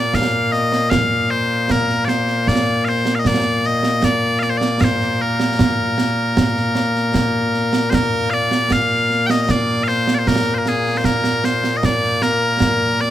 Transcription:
0.00 13.10 A#2 medium
0.00 13.10 A#3 medium
0.00 0.15 D5 loud
0.13 0.52 F5 loud
0.13 concert bass drum medium
0.13 snare loud
0.52 0.90 D#5 loud
0.52 snare soft
0.72 snare medium
0.90 1.30 F5 loud
0.90 concert bass drum medium
0.90 snare loud
1.30 1.71 C5 loud
1.70 2.05 A#4 medium
1.70 concert bass drum medium
1.70 snare loud
1.89 snare soft
2.05 2.48 C5 medium
2.05 2.08 D5 medium
2.05 snare medium
2.27 snare soft
2.47 2.85 D5 medium
2.47 concert bass drum medium
2.47 snare medium
2.85 3.15 C5 medium
2.85 2.88 F5 medium
2.85 snare soft
3.06 snare medium
3.15 3.19 F5 medium
3.19 3.27 D#5 medium
3.25 3.66 D5 loud
3.25 concert bass drum medium
3.25 snare medium
3.63 4.04 D#5 medium
3.63 snare soft
3.83 snare medium
4.03 4.39 D5 loud
4.03 concert bass drum soft
4.03 snare loud
4.39 4.50 D5 medium
4.39 4.43 F5 medium
4.39 snare soft
4.50 4.57 C5 medium
4.57 4.81 D5 medium
4.57 snare medium
4.81 5.22 C5 medium
4.81 4.84 F5 medium
4.81 concert bass drum medium
4.81 snare loud
5.01 snare soft
5.22 7.90 A#4 medium
5.40 snare medium
5.59 concert bass drum medium
5.59 snare loud
5.98 snare medium
6.37 concert bass drum medium
6.37 snare loud
6.56 snare soft
6.75 snare medium
6.95 snare soft
7.14 concert bass drum medium
7.14 snare medium
7.54 snare soft
7.73 snare medium
7.90 7.95 C5 medium
7.90 concert bass drum medium
7.90 snare loud
7.95 8.30 A#4 medium
8.30 8.72 D5 loud
8.30 8.34 F5 loud
8.30 snare soft
8.51 snare medium
8.71 9.27 F5 loud
8.71 concert bass drum medium
8.71 snare loud
9.10 snare soft
9.27 9.41 D#5 loud
9.27 9.30 G5 loud
9.27 snare medium
9.41 9.51 D#5 medium
9.49 9.83 D5 loud
9.49 concert bass drum medium
9.49 snare medium
9.83 9.88 F5 loud
9.88 10.14 C5 loud
9.88 snare soft
10.08 snare medium
10.14 10.19 D5 medium
10.19 10.28 C5 medium
10.27 10.55 A#4 loud
10.27 concert bass drum medium
10.27 snare loud
10.47 snare soft
10.55 10.68 A#4 medium
10.55 10.58 C5 medium
10.66 10.97 G#4 medium
10.66 snare medium
10.86 snare soft
10.97 11.05 C5 medium
11.04 11.45 A#4 medium
11.04 concert bass drum medium
11.04 snare loud
11.24 snare medium
11.44 11.77 C5 medium
11.44 snare medium
11.64 snare medium
11.77 11.85 D#5 medium
11.83 12.22 D5 loud
11.83 concert bass drum medium
11.83 snare medium
12.22 13.01 A#4 loud
12.22 snare medium
12.60 concert bass drum medium
12.60 snare loud
13.00 13.10 D5 loud
13.00 snare soft

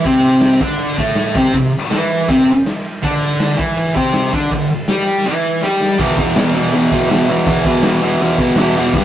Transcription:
0.05 0.61 C3 medium
0.05 0.61 C4 loud
0.05 kick loud
0.05 ride medium
0.23 ride medium
0.41 snare loud
0.41 ride medium
0.60 0.97 D3 medium
0.60 0.99 D4 loud
0.60 kick loud
0.60 ride medium
0.79 ride medium
0.97 1.35 A2 medium
0.97 1.36 A3 medium
0.97 kick loud
0.97 ride medium
1.15 snare loud
1.15 ride medium
1.35 1.53 C3 medium
1.35 1.55 C4 medium
1.35 kick loud
1.35 ride medium
1.53 1.69 C3 medium
1.53 kick medium
1.53 ride medium
1.73 ride medium
1.90 2.28 E3 medium
1.90 2.29 E4 medium
1.90 snare loud
1.90 ride medium
2.10 ride medium
2.29 2.48 C3 medium
2.29 2.48 C4 loud
2.29 kick loud
2.29 ride medium
2.49 ride medium
2.66 snare loud
2.66 ride medium
2.85 ride medium
3.03 3.57 D3 medium
3.03 3.59 D4 loud
3.03 kick loud
3.03 ride medium
3.22 ride medium
3.40 snare loud
3.40 ride medium
3.58 3.95 E3 medium
3.58 3.96 E4 medium
3.58 kick loud
3.58 ride medium
3.77 ride medium
3.95 4.32 C3 medium
3.95 4.33 C4 loud
3.95 kick loud
3.95 ride medium
4.13 snare loud
4.13 ride medium
4.33 4.51 D3 medium
4.33 4.52 D4 loud
4.33 kick loud
4.33 ride medium
4.51 4.67 D3 medium
4.51 kick medium
4.51 ride medium
4.70 ride medium
4.88 5.25 G3 medium
4.88 5.26 G4 loud
4.88 snare loud
4.88 ride medium
5.07 ride medium
5.26 5.62 E3 loud
5.26 5.63 E4 medium
5.61 5.99 G3 medium
5.61 5.99 G4 loud
5.61 snare medium
5.81 snare medium
5.98 6.17 E2 loud
5.98 6.17 B2 loud
5.98 6.18 E3 loud
5.98 kick loud
5.98 crash loud
6.17 6.35 E2 loud
6.17 6.35 B2 medium
6.17 6.37 E3 medium
6.17 kick medium
6.35 6.54 E2 medium
6.35 6.54 B2 medium
6.35 6.56 E3 medium
6.35 snare loud
6.35 open hi-hat medium
6.46 snare soft
6.54 6.71 E2 medium
6.54 6.73 B2 medium
6.54 6.74 E3 loud
6.73 6.90 E2 loud
6.73 6.92 B2 loud
6.73 6.93 E3 loud
6.73 open hi-hat medium
6.91 7.08 E2 medium
6.91 7.10 B2 medium
6.91 7.10 E3 loud
6.91 kick medium
7.09 7.27 E2 medium
7.09 7.28 B2 medium
7.09 7.29 E3 medium
7.09 snare loud
7.09 open hi-hat medium
7.28 7.45 E2 medium
7.28 7.46 B2 medium
7.28 7.47 E3 loud
7.46 7.65 E2 loud
7.46 7.65 B2 medium
7.46 7.66 E3 loud
7.46 kick loud
7.46 open hi-hat medium
7.65 7.83 E2 medium
7.65 7.84 B2 medium
7.65 7.85 E3 loud
7.65 kick medium
7.83 8.00 E2 medium
7.83 8.01 B2 medium
7.83 8.03 E3 loud
7.83 snare loud
7.83 open hi-hat medium
7.92 snare soft
8.02 8.20 E2 medium
8.02 8.21 B2 medium
8.02 8.21 E3 loud
8.19 8.38 E2 loud
8.19 8.39 B2 loud
8.19 8.39 E3 loud
8.19 open hi-hat medium
8.38 8.56 E2 medium
8.38 8.57 B2 medium
8.38 8.58 E3 loud
8.38 kick medium
8.56 8.75 E2 medium
8.56 8.76 B2 medium
8.56 8.77 E3 loud
8.56 snare loud
8.56 open hi-hat medium
8.76 8.93 E2 medium
8.76 8.94 B2 medium
8.76 8.94 E3 loud
8.93 9.04 G2 loud
8.93 9.04 D3 loud
8.93 9.04 G3 loud
8.93 kick loud
8.93 crash loud

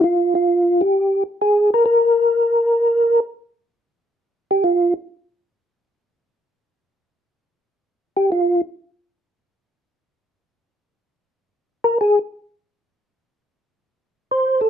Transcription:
0.01 0.04 E4 medium
0.01 0.34 F4 medium
0.35 0.82 F4 medium
0.81 1.23 G4 medium
1.42 1.70 G#4 medium
1.74 1.84 A#4 medium
1.86 3.20 A#4 medium
4.51 4.64 G4 medium
4.64 4.94 F4 medium
8.17 8.30 G4 loud
8.32 8.61 F4 medium
11.84 11.98 A#4 loud
12.01 12.19 G#4 medium
14.31 14.61 C5 medium
14.61 14.70 A4 loud

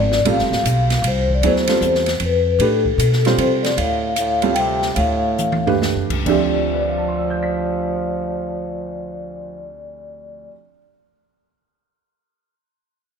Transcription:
0.00 0.24 G#1 medium
0.00 0.17 F3 medium
0.00 0.17 B3 soft
0.00 0.18 E4 soft
0.00 0.17 G4 medium
0.00 0.27 D5 medium
0.12 snare soft
0.25 0.38 A1 medium
0.25 1.34 G3 medium
0.25 1.34 C4 medium
0.25 1.34 F4 medium
0.25 1.34 A4 medium
0.25 1.07 F5 medium
0.25 ride medium
0.38 0.50 F1 medium
0.38 snare soft
0.51 0.63 D1 medium
0.51 snare soft
0.63 1.02 B1 medium
0.63 hi-hat pedal medium
0.63 ride medium
0.90 snare soft
0.90 ride soft
1.02 1.40 C2 medium
1.02 ride medium
1.08 1.29 C5 medium
1.29 kick medium
1.35 1.44 D5 medium
1.42 1.80 D2 medium
1.42 1.65 F#3 medium
1.42 1.66 B3 medium
1.42 1.66 E4 medium
1.42 1.66 G#4 medium
1.42 ride medium
1.46 1.70 C5 medium
1.56 snare soft
1.67 2.02 G3 medium
1.67 2.02 C4 medium
1.67 2.02 F4 medium
1.67 2.02 A4 medium
1.67 snare soft
1.67 ride medium
1.72 2.06 C5 medium
1.81 2.19 E2 medium
1.81 hi-hat pedal medium
1.95 snare soft
2.06 snare soft
2.06 ride soft
2.20 2.58 F2 medium
2.20 ride medium
2.25 2.63 B4 medium
2.59 2.97 A2 medium
2.59 2.83 A3 medium
2.59 2.82 D4 medium
2.59 2.83 G4 medium
2.59 3.60 A4 medium
2.59 2.83 B4 medium
2.59 ride medium
2.85 kick medium
2.98 3.36 B2 medium
2.98 hi-hat pedal medium
2.98 ride medium
3.12 snare soft
3.25 3.75 G3 medium
3.25 3.75 C4 medium
3.25 3.75 F4 medium
3.25 3.75 C5 medium
3.25 snare soft
3.25 ride soft
3.38 3.51 F2 medium
3.38 3.75 C3 medium
3.38 3.51 C5 medium
3.38 ride medium
3.63 3.70 F2 medium
3.63 3.69 D5 medium
3.63 snare soft
3.63 ride soft
3.77 4.92 D2 medium
3.77 4.13 A2 medium
3.77 4.13 F5 medium
3.77 ride medium
4.16 4.53 A2 medium
4.16 4.52 F5 medium
4.16 hi-hat pedal medium
4.16 ride medium
4.42 4.93 G3 medium
4.42 4.93 C4 medium
4.42 4.93 F4 medium
4.42 4.94 A4 medium
4.42 ride soft
4.54 4.93 C3 medium
4.54 4.92 G5 medium
4.54 ride medium
4.82 snare soft
4.95 5.91 D2 medium
4.95 5.76 A2 medium
4.95 5.76 F5 medium
4.95 ride medium
5.38 hi-hat pedal medium
5.38 high tom soft
5.52 high tom medium
5.66 6.23 A3 medium
5.66 6.23 D4 medium
5.66 6.23 G4 medium
5.66 6.23 B4 medium
5.66 floor tom medium
5.82 snare medium
5.96 6.09 F2 medium
6.10 6.24 C#2 medium
6.10 kick medium
6.10 crash medium
6.25 10.51 D2 medium
6.25 10.47 D2 medium
6.25 10.51 D3 medium
6.25 9.76 F3 medium
6.25 10.52 F3 medium
6.25 10.52 C4 medium
6.25 10.47 D5 medium
6.25 10.52 E5 medium
6.25 kick medium
6.25 crash medium
6.29 10.53 G4 medium
6.73 10.47 B4 soft
6.81 10.51 D5 soft
6.89 10.55 F5 soft
6.98 10.60 A5 soft
7.08 10.65 C6 soft
7.18 10.70 E6 soft
7.30 10.76 G6 soft
7.43 10.82 B6 soft

